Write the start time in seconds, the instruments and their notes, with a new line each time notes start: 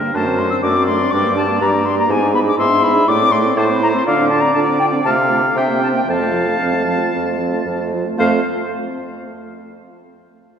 Already playing: oboe A#4
0.02 french horn A#3
0.14 bassoon F#2, french horn A3, clarinet D4, oboe C5, flute A5
0.26 french horn C4, clarinet F#4
0.37 french horn A3, clarinet D4, flute C6
0.50 french horn C4, clarinet F#4, flute E6
0.62 bassoon F#2, french horn A3, clarinet D4, oboe D5, flute D6
0.75 french horn C4, clarinet F#4
0.86 french horn A3, clarinet D4, flute C6
0.99 french horn C4, clarinet F#4
1.11 bassoon G2, french horn G3, clarinet D4, flute D6
1.23 french horn A#3, clarinet G4
1.35 french horn G3, clarinet D4, flute A5
1.47 french horn A#3, clarinet G4
1.60 bassoon G2, french horn G3, clarinet D4, flute A#5
1.72 french horn A#3, clarinet G4
1.84 french horn G3, clarinet D4, flute C6
1.96 french horn A#3, clarinet G4, flute A#5
2.08 bassoon G#2, french horn B3, clarinet E4, flute G#5
2.20 french horn D4, clarinet G#4
2.33 french horn B3, clarinet E4, flute B5
2.45 french horn D4, clarinet G#4, flute D6
2.57 bassoon G#2, french horn B3, clarinet E4, oboe E5, flute C6
2.69 french horn D4, clarinet G#4
2.81 french horn B3, clarinet E4, flute B5
2.94 french horn D4, clarinet G#4
3.06 bassoon A2, french horn A3, clarinet E4, oboe D5, flute D6
3.19 french horn C4, clarinet A4
3.30 french horn A3, clarinet E4, flute C6
3.42 french horn C4, clarinet A4
3.55 bassoon A2, french horn A3, clarinet E4, oboe C5, flute A5
3.67 french horn C4, clarinet A4
3.80 french horn A3, clarinet E4, flute A#5
3.92 french horn C4, clarinet A4, flute C6
4.04 bassoon D3, french horn D4, clarinet F4, oboe D5, flute F5
4.17 french horn C4, clarinet D4
4.29 french horn D4, clarinet F4, flute A5
4.41 french horn C4, clarinet D4, flute A#5
4.54 bassoon D3, french horn D4, clarinet F4, flute A5
4.68 french horn C4, clarinet D4
4.79 french horn D4, clarinet F4, flute G5
4.92 french horn C4, clarinet D4
5.04 bassoon C3, french horn A3, clarinet F4, oboe F5, flute A5
5.17 french horn C4, clarinet A4
5.29 french horn A3, clarinet F4, flute F5
5.42 french horn C4, clarinet A4
5.55 bassoon C3, french horn C4, clarinet D4, flute E5, oboe G5
5.67 french horn A#3, clarinet C4
5.80 french horn C4, clarinet D4, flute A5
5.93 french horn A#3, clarinet C4, flute G5
6.06 bassoon F2, french horn F3, clarinet C4, flute F5, oboe A5
6.21 french horn A3, clarinet F4
6.33 french horn F3, clarinet C4
6.47 french horn A3, clarinet F4
6.61 bassoon F2, french horn F3, clarinet C4
6.73 french horn A3, clarinet F4
6.86 french horn F3, clarinet C4
6.99 french horn A3, clarinet F4
7.12 bassoon F2, french horn F3, clarinet C4
7.25 french horn A3, clarinet F4
7.39 french horn F3, clarinet C4
7.53 french horn A3, clarinet F4
7.65 bassoon F2, french horn F3, clarinet C4
7.79 french horn A3, clarinet F4
7.93 french horn F3, clarinet C4
8.07 french horn A3, clarinet F4
8.18 bassoon F2, french horn A3, clarinet C4, oboe C5, flute F5